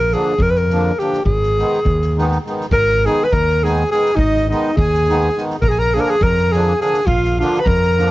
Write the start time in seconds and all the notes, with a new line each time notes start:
Already playing: A#1 A#4
0.11 D3 F3 A#3 D4 G#4, snare
0.38 F2, kick
0.43 A#4
0.50 B4
0.55 A#4, snare
0.70 D3 F3 A#3 D4, snare
0.99 D3 F3 A#3 D4 G4, snare
1.13 snare
1.25 G#1 G#4, kick
1.43 snare
1.57 D#3 G#3 B3 D#4, snare
1.73 snare
1.85 D#2, kick
2.02 snare
2.17 D#3 G#3 B3 D#4, snare
2.31 snare
2.45 D#3 G#3 B3 D#4, snare
2.60 snare
2.71 G#1 A#4 A#5, kick
2.89 snare
3.04 D#3 G#3 B3 D#4 G#4 G#5, snare
3.24 B4 B5
3.32 D#2 A#4 A#5, kick
3.49 snare
3.63 D#3 G#3 B3 D#4 G#4 G#5, snare
3.91 D#3 G#3 B3 D#4 G#4 G#5, snare
4.05 snare
4.16 G#1 D#4 D#5, kick
4.37 snare
4.49 D#3 G#3 B3 D#4 D#5, snare
4.77 D#2 G#4 G#5, kick
4.94 snare
5.08 D#3 G#3 B3 D#4, snare
5.35 D#3 G#3 B3 D#4, snare
5.50 snare
5.61 A#1 A#4 A#5, kick
5.69 G#4 G#5
5.78 A#4 A#5, snare
5.94 D3 F3 A#3 D4 G#4 G#5, snare
6.00 A#4 A#5
6.07 G#4 G#5
6.21 F2 A#4 A#5, kick
6.37 snare
6.52 D3 F3 A#3 D4 G#4 G#5, snare
6.79 D3 F3 A#3 D4 G#4 G#5, snare
6.93 snare
7.06 A#1 F4 F5, kick
7.24 snare
7.37 D3 F3 A#3 D4 F4 F5, snare
7.54 B5, snare
7.61 B4 A#5
7.66 F2 A#4, kick
7.83 snare
7.96 D3 F3 A#3 D4, snare